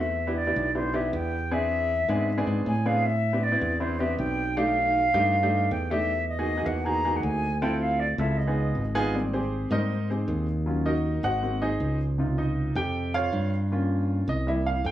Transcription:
Already playing: E2
0.00 E5
0.27 B3 D4 E4 G4
0.37 D5
0.47 B3 D4 E4 G4
0.56 B1
0.75 B3 D4 E4 G4 C5
0.94 B3 D4 E4 G4 E5
1.13 E2 G5
1.51 B3 C4 D4 G#4 E5
2.09 G#2 B3 C4 D4 G#4
2.38 B3 C4 D4 G#4
2.47 G#2
2.66 A2 G#5
2.86 B3 C4 D4 G#4 F5
3.05 E5
3.33 B3 C4 D4 G4
3.43 D5
3.52 B3 C4 D4 E4
3.61 E2
3.80 B3 C4 D4 E4 C5
3.99 B3 C4 D4 G4 E5
4.18 B1 G5
4.57 A3 D4 D#4 G4 F5
5.14 G2 A3 D4 D#4 G4
5.43 A3 D4 D#4 G4
5.71 E2 G5
5.91 A3 D4 D#4 G4 E5
6.29 D#5
6.39 A#3 D#4 F#4 G#4
6.57 A#3 D#4 F#4 G#4
6.66 E2 F#5
6.85 A#3 D#4 F#4 G#4 A#5
7.05 A#3 D#4 F#4 G#4
7.16 F#5
7.23 D2 G#5
7.61 C4 E4 F4 A4 G5
7.81 F5
8.00 D5
8.18 C#2 C4 E4 F4 A4 E5
8.37 D#5
8.47 B3 D#4 F4 G#4
8.75 G#1
8.95 B3 D#4 F4 G#4
9.14 G3 A#3 C4
9.33 C4 G4 G#4 C5
9.71 G#2 G3 A#3 C4 D#4 A#4 C5 D#5
10.10 C4 G4 G#4 C5
10.28 D#2
10.66 F#3 C#4 F4
10.86 D#4 F#4 A#4 D#5
11.23 G#1 F#4 C5 D#5 F#5
11.42 A#3 C4 F#4
11.62 D#4 G#4 C5 D#5
11.80 C#2
12.18 C3 D#4 F4
12.38 D#4 D#5
12.75 F2 G4 G5
13.14 F4 C5 C#5 F5
13.33 G2
13.71 A#3 C#4 F4
14.28 C2 D#5
14.47 G3 A#3 E4 E5
14.66 F5
14.84 F2 G5

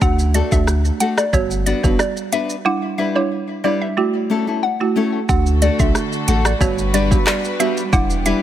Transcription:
0.01 D2 A3 D4 F#4 F#5, kick, shaker
0.19 shaker
0.34 A3 D4 F#4 A4 D5, closed hi-hat, shaker
0.52 D2 A3 D4 F#4 E5, kick, shaker
0.67 cross-stick, shaker
0.85 shaker
1.00 A3 D4 F#4 A4 F#5, closed hi-hat, shaker
1.18 D5, cross-stick, shaker
1.33 G1 G3 B3 F#4 C#5, kick, shaker
1.51 shaker
1.66 B3 D4 F#4 B4 D5, closed hi-hat, shaker
1.83 F#1 G3 B3 D4 F#4 B4, kick, shaker
1.99 D5, cross-stick, shaker
2.17 shaker
2.32 B3 D4 F#4 B4 E5, closed hi-hat, shaker
2.50 shaker
2.65 G3 D4 E4 F#5
2.98 G3 D4 E4 B4 E5
3.16 G3 D4 E4 C#5
3.64 G3 D4 E4 B4 D5
3.81 E5
3.97 A3 E4 F#4
4.30 A3 C#4 E4 A4
4.47 A3 C#4 E4 A4
4.63 F#5
4.80 A3 E4 F#4
4.96 A3 C#4 E4 A4
5.29 D2 D3 A3 D4 F#4 A4 F#5, kick, shaker
5.46 shaker
5.62 A3 D4 F#4 A4 D5, closed hi-hat, shaker
5.79 B1 A3 D4 F#4 E5, kick, shaker
5.95 cross-stick, shaker
6.12 shaker
6.28 A1 A3 D4 F#4 A4 F#5, closed hi-hat, shaker
6.45 D5, cross-stick, shaker
6.61 G1 G3 B3 F#4 B4 C#5, kick, shaker
6.78 shaker
6.94 G3 D4 F#4 B4 D5, closed hi-hat, shaker
7.11 G3 B3 F#4, kick, shaker
7.27 D5, cross-stick, clap, shaker
7.44 muted nylon-string guitar stroke, shaker
7.59 G3 B3 D4 F#4 B4 E5, closed hi-hat, shaker
7.77 shaker
7.92 E1 E3 G3 B3 D4 E4 G4 F#5, kick, shaker
8.10 shaker
8.25 G3 D4 E4 B4 E5, closed hi-hat, shaker

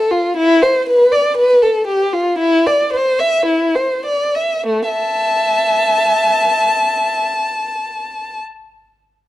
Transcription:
Already playing: A4
0.11 F4
0.37 E4
0.63 C5
0.89 B4
1.12 D5
1.37 B4
1.62 A4
1.87 G4
2.13 F4
2.38 E4
2.67 D5
2.93 C5
3.20 E5
3.46 E4
3.76 C5
4.05 D5
4.35 E5
4.66 A3
4.89 E5 A5

